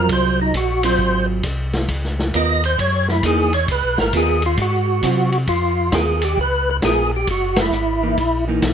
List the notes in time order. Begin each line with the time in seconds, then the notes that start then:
Already playing: F#3 C4 F4 A#4
0.09 C2 C5, kick, ride
0.41 D#4
0.54 A#1 F#4, kick, hi-hat pedal, ride
0.83 F#3 C4 F4 C5, ride
0.98 G#1, kick
1.43 C2, kick, hi-hat pedal, ride
1.73 snare, ride
1.88 C#2, kick, ride
2.04 snare
2.19 snare
2.34 D#2 B3 F4 A#4 D#5, kick, hi-hat pedal, ride
2.64 C5, ride
2.78 F#2 C#5, kick, ride
3.08 E4, snare
3.23 E2 E3 A#3 D#4 G#4, kick, hi-hat pedal, ride
3.53 C#5, ride
3.68 C#2 B4, kick, ride
3.83 B1
3.98 G#1 A#4, snare
4.13 D#2 B3 F4 A#4, kick, hi-hat pedal, ride
4.17 G#4
4.42 F4, ride
4.57 G#2, kick, ride
4.62 F#4
5.03 C3 F#3 C4 F4, kick, hi-hat pedal, ride
5.32 ride
5.47 F2 F4, kick, ride
5.92 D#2 B3 F4 G#4 A#4, kick, snare, hi-hat pedal, ride
6.22 G4, ride
6.37 C#2 B4, kick
6.71 B4
6.82 A#1 B3 F4 G#4 A#4, kick, snare, hi-hat pedal, ride
7.16 G4
7.27 F#1 F#4, kick, ride
7.56 snare, ride
7.61 E4
7.72 G#1, hi-hat pedal
8.03 E3 A#3 D#4
8.17 A#1, kick, ride
8.48 E3 A#3 D#4
8.62 B1, kick, snare, hi-hat pedal, ride